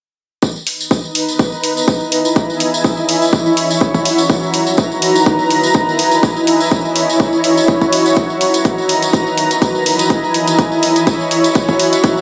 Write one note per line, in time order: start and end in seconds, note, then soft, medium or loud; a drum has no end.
0.42 kick loud
0.42 tambourine medium
0.50 1.69 B4 medium
0.56 tambourine soft
0.67 open hi-hat medium
0.81 tambourine medium
0.91 kick loud
0.91 tambourine medium
1.04 tambourine soft
1.15 open hi-hat medium
1.29 tambourine medium
1.39 3.72 E4 medium
1.39 kick loud
1.39 tambourine medium
1.52 tambourine soft
1.64 open hi-hat medium
1.77 tambourine medium
1.88 kick loud
1.88 tambourine medium
2.01 tambourine soft
2.12 open hi-hat medium
2.25 tambourine medium
2.36 kick loud
2.36 tambourine medium
2.50 tambourine soft
2.60 open hi-hat loud
2.74 tambourine medium
2.84 kick loud
2.84 tambourine medium
2.97 tambourine soft
3.09 open hi-hat medium
3.22 tambourine medium
3.32 4.69 F#4 medium
3.32 kick loud
3.32 tambourine medium
3.46 tambourine soft
3.57 open hi-hat loud
3.70 5.56 A#5 medium
3.70 tambourine medium
3.81 kick loud
3.94 kick medium
3.94 tambourine soft
4.05 open hi-hat loud
4.18 tambourine medium
4.30 kick loud
4.30 tambourine medium
4.35 5.56 B4 medium
4.43 tambourine soft
4.54 open hi-hat loud
4.67 tambourine medium
4.77 kick loud
4.77 tambourine medium
4.91 tambourine soft
5.02 open hi-hat loud
5.16 tambourine medium
5.26 7.60 E4 medium
5.26 kick loud
5.26 tambourine medium
5.39 tambourine soft
5.51 open hi-hat loud
5.63 tambourine medium
5.74 kick loud
5.74 tambourine medium
5.89 tambourine soft
5.99 open hi-hat medium
6.11 tambourine medium
6.19 7.60 C#5 medium
6.23 kick loud
6.23 tambourine medium
6.36 tambourine soft
6.47 open hi-hat loud
6.60 tambourine medium
6.72 kick loud
6.85 tambourine soft
6.96 open hi-hat medium
7.10 tambourine medium
7.20 8.56 F#4 medium
7.20 kick loud
7.33 tambourine soft
7.44 open hi-hat loud
7.57 tambourine medium
7.63 9.43 A#5 medium
7.68 kick loud
7.81 kick medium
7.81 tambourine soft
7.93 open hi-hat loud
8.06 tambourine medium
8.16 kick loud
8.16 closed hi-hat soft
8.16 tambourine medium
8.30 tambourine soft
8.41 open hi-hat loud
8.54 closed hi-hat medium
8.54 tambourine medium
8.65 kick loud
8.65 closed hi-hat soft
8.65 tambourine medium
8.78 tambourine soft
8.89 open hi-hat medium
9.03 closed hi-hat medium
9.03 tambourine medium
9.13 11.47 E4 medium
9.13 kick loud
9.13 closed hi-hat soft
9.13 tambourine medium
9.27 tambourine soft
9.38 open hi-hat loud
9.51 closed hi-hat medium
9.51 tambourine medium
9.62 kick loud
9.62 closed hi-hat soft
9.62 tambourine medium
9.75 tambourine soft
9.86 open hi-hat loud
9.99 closed hi-hat medium
9.99 tambourine medium
10.10 kick loud
10.10 closed hi-hat soft
10.24 tambourine soft
10.29 11.47 C#5 medium
10.34 open hi-hat medium
10.47 closed hi-hat medium
10.47 tambourine medium
10.59 kick loud
10.59 closed hi-hat soft
10.59 tambourine medium
10.72 tambourine soft
10.83 open hi-hat medium
10.96 closed hi-hat medium
10.96 tambourine medium
11.07 12.21 F#4 medium
11.07 kick loud
11.07 closed hi-hat soft
11.07 tambourine medium
11.21 tambourine soft
11.31 open hi-hat loud
11.44 12.21 A#5 medium
11.44 closed hi-hat medium
11.44 tambourine medium
11.55 kick loud
11.55 closed hi-hat soft
11.55 tambourine medium
11.69 kick medium
11.69 tambourine soft
11.80 open hi-hat medium
11.93 closed hi-hat medium
11.93 tambourine medium
12.04 kick loud
12.04 closed hi-hat soft
12.04 tambourine medium
12.17 tambourine soft